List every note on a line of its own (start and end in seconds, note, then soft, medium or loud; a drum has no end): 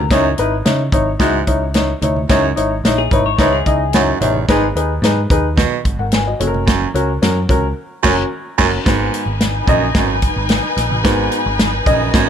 0.10 0.33 C#2 loud
0.10 0.32 F#2 medium
0.10 0.26 D#4 loud
0.10 0.27 E4 loud
0.10 0.27 C#5 loud
0.10 kick medium
0.10 snare loud
0.10 closed hi-hat medium
0.25 muted conga soft
0.38 0.61 G#1 medium
0.38 0.54 D#4 medium
0.38 0.54 E4 medium
0.38 0.54 B4 loud
0.38 closed hi-hat medium
0.65 0.88 C#3 medium
0.65 0.81 D#4 medium
0.65 0.81 E4 medium
0.65 0.81 C#5 medium
0.65 snare loud
0.65 closed hi-hat medium
0.65 muted conga soft
0.65 high conga medium
0.92 1.15 G#1 loud
0.92 1.08 D#4 medium
0.92 1.08 E4 medium
0.92 1.09 C#5 medium
0.92 kick loud
0.92 closed hi-hat medium
0.92 high conga medium
0.92 low conga medium
1.19 1.42 C#2 medium
1.19 1.42 G#2 medium
1.19 1.35 D#4 loud
1.19 1.36 E4 loud
1.19 1.36 F#4 loud
1.19 kick medium
1.19 snare loud
1.19 closed hi-hat medium
1.35 muted conga soft
1.47 1.93 C#2 medium
1.47 1.63 D#4 medium
1.47 1.63 E4 medium
1.47 1.63 C#5 medium
1.47 kick medium
1.47 closed hi-hat medium
1.47 high conga medium
1.74 1.90 D#4 medium
1.74 1.90 E4 medium
1.74 1.91 C#5 medium
1.74 snare loud
1.74 closed hi-hat medium
1.74 muted conga soft
1.74 high conga medium
1.89 muted conga soft
2.02 2.25 D2 medium
2.02 2.18 D#4 medium
2.02 2.18 E4 medium
2.02 2.18 C#5 medium
2.02 closed hi-hat medium
2.02 low conga medium
2.16 low conga medium
2.29 2.52 C#2 loud
2.29 2.51 F#2 medium
2.29 2.45 D#4 loud
2.29 2.45 E4 medium
2.29 2.45 C#5 loud
2.29 kick loud
2.29 snare loud
2.29 closed hi-hat medium
2.29 muted conga soft
2.44 muted conga soft
2.56 2.80 G#1 medium
2.56 2.72 D#4 medium
2.56 2.72 E4 medium
2.56 2.73 C#5 medium
2.56 closed hi-hat medium
2.84 3.07 A#1 medium
2.84 3.00 D#4 medium
2.84 3.00 E4 medium
2.84 3.00 C#5 medium
2.84 snare loud
2.84 closed hi-hat medium
2.84 high conga medium
2.98 3.11 G#4 medium
3.11 3.34 G#1 medium
3.11 3.28 D#4 medium
3.11 3.28 E4 medium
3.11 3.25 B4 medium
3.11 3.28 C#5 medium
3.11 kick medium
3.11 closed hi-hat medium
3.11 high conga medium
3.11 low conga medium
3.26 3.39 C#5 medium
3.38 3.61 C#2 loud
3.38 3.61 G#2 medium
3.38 3.54 D#4 loud
3.38 3.55 E4 loud
3.38 3.53 B4 medium
3.38 3.55 C#5 loud
3.38 kick medium
3.38 snare medium
3.38 closed hi-hat medium
3.53 4.31 G#4 medium
3.53 muted conga soft
3.66 4.12 C#2 medium
3.66 3.82 D#4 medium
3.66 3.82 E4 medium
3.66 3.82 D#5 medium
3.66 3.92 G#5 medium
3.66 kick medium
3.66 closed hi-hat medium
3.66 high conga medium
3.93 4.16 F#2 medium
3.93 4.09 D#4 medium
3.93 4.10 E4 medium
3.93 4.10 C#5 medium
3.93 4.20 F#5 medium
3.93 snare loud
3.93 closed hi-hat medium
3.93 high conga medium
4.21 4.44 A1 medium
4.21 4.43 E2 medium
4.21 4.37 D#4 medium
4.21 4.37 E4 medium
4.21 4.37 C#5 medium
4.21 4.47 E5 medium
4.21 closed hi-hat medium
4.21 low conga medium
4.34 low conga medium
4.48 4.71 G#1 loud
4.48 4.70 G#2 medium
4.48 4.64 D#4 loud
4.48 4.65 G#4 loud
4.48 4.65 B4 loud
4.48 kick medium
4.48 snare loud
4.48 closed hi-hat medium
4.63 muted conga soft
4.75 4.98 D#2 medium
4.75 4.91 D#4 medium
4.75 4.92 G#4 medium
4.75 4.92 B4 medium
4.75 closed hi-hat medium
5.02 5.25 G#2 loud
5.02 5.19 D#4 medium
5.02 5.19 G#4 medium
5.02 5.19 B4 loud
5.02 snare loud
5.02 closed hi-hat medium
5.02 muted conga soft
5.02 high conga medium
5.17 muted conga soft
5.30 5.64 D#2 loud
5.30 5.46 D#4 medium
5.30 5.46 G#4 medium
5.30 5.46 B4 medium
5.30 kick loud
5.30 closed hi-hat medium
5.30 high conga medium
5.30 low conga medium
5.57 5.80 B2 medium
5.57 kick medium
5.57 snare loud
5.57 closed hi-hat medium
5.57 muted conga soft
5.74 muted conga soft
5.85 5.96 G#1 medium
5.85 kick medium
5.85 closed hi-hat medium
5.85 high conga medium
5.99 6.33 G#1 medium
5.99 6.13 A#4 medium
5.99 6.12 F#5 medium
6.12 6.27 B4 medium
6.12 6.27 G#5 medium
6.12 snare loud
6.12 closed hi-hat medium
6.12 muted conga soft
6.12 high conga medium
6.27 6.39 F#4 soft
6.27 6.53 D#5 medium
6.27 muted conga soft
6.40 6.85 F#1 loud
6.40 6.84 C#4 medium
6.40 6.84 F#4 medium
6.40 6.47 A4 medium
6.40 closed hi-hat medium
6.40 low conga medium
6.47 6.87 A#4 medium
6.54 low conga medium
6.67 6.89 F#2 medium
6.67 kick loud
6.67 snare loud
6.67 closed hi-hat medium
6.82 muted conga soft
6.94 7.17 C#2 medium
6.94 7.10 C#4 medium
6.94 7.10 F#4 medium
6.94 7.10 A#4 medium
6.94 closed hi-hat medium
7.22 7.45 F#2 loud
7.22 7.37 C#4 medium
7.22 7.38 F#4 medium
7.22 7.38 A#4 medium
7.22 snare loud
7.22 closed hi-hat medium
7.22 muted conga soft
7.22 high conga medium
7.49 7.72 C#2 medium
7.49 7.65 C#4 medium
7.49 7.65 F#4 medium
7.49 7.65 A#4 loud
7.49 kick loud
7.49 closed hi-hat medium
7.49 high conga medium
7.49 low conga medium
8.03 8.23 F#1 medium
8.03 8.17 F#2 loud
8.03 8.23 C#4 loud
8.03 8.24 F#4 loud
8.03 8.24 A#4 loud
8.03 kick loud
8.03 snare loud
8.03 crash medium
8.58 8.77 F#1 loud
8.58 8.72 F#2 loud
8.58 8.78 C#4 medium
8.58 8.78 F#4 medium
8.58 8.78 A#4 medium
8.58 kick loud
8.58 snare loud
8.58 crash medium
8.85 9.09 G#1 loud
8.85 9.24 G#2 medium
8.85 9.23 B3 medium
8.85 12.29 D#4 medium
8.85 9.23 F#4 medium
8.85 9.23 A#4 medium
8.85 12.29 B4 medium
8.85 9.71 B4 medium
8.85 12.29 G#5 medium
8.85 kick loud
8.85 snare loud
8.85 closed hi-hat medium
8.85 muted conga soft
9.14 closed hi-hat medium
9.26 9.60 G#1 medium
9.41 snare loud
9.41 closed hi-hat medium
9.41 muted conga soft
9.41 high conga medium
9.55 muted conga soft
9.67 9.90 A#1 loud
9.67 9.89 F#2 medium
9.67 9.94 D#5 loud
9.67 kick loud
9.67 closed hi-hat medium
9.67 high conga medium
9.67 low conga medium
9.95 10.29 G#1 loud
9.95 10.17 F#2 medium
9.95 kick loud
9.95 snare loud
9.95 closed hi-hat medium
9.95 muted conga soft
10.11 muted conga soft
10.22 kick medium
10.22 closed hi-hat medium
10.22 high conga medium
10.36 10.59 G#1 medium
10.49 snare loud
10.49 closed hi-hat medium
10.49 high conga medium
10.64 muted conga soft
10.77 10.89 A#1 medium
10.77 snare soft
10.77 closed hi-hat medium
10.90 11.03 A1 medium
10.90 low conga medium
11.04 11.28 G#1 loud
11.04 11.43 G#2 medium
11.04 11.42 B3 medium
11.04 11.42 F#4 medium
11.04 11.41 A#4 medium
11.04 11.90 B4 medium
11.04 kick loud
11.04 snare loud
11.04 closed hi-hat loud
11.19 muted conga soft
11.32 closed hi-hat medium
11.46 11.80 G#1 medium
11.59 snare loud
11.59 closed hi-hat medium
11.59 muted conga soft
11.59 high conga medium
11.86 12.09 A#1 loud
11.86 12.09 F#2 medium
11.86 12.12 D#5 loud
11.86 kick loud
11.86 closed hi-hat medium
11.86 high conga medium
11.86 low conga medium
12.14 12.29 G#1 loud
12.14 12.29 F#2 medium
12.14 12.29 A#3 soft
12.14 12.29 B3 soft
12.14 12.29 F#4 medium
12.14 kick loud
12.14 snare loud
12.14 closed hi-hat medium
12.14 muted conga soft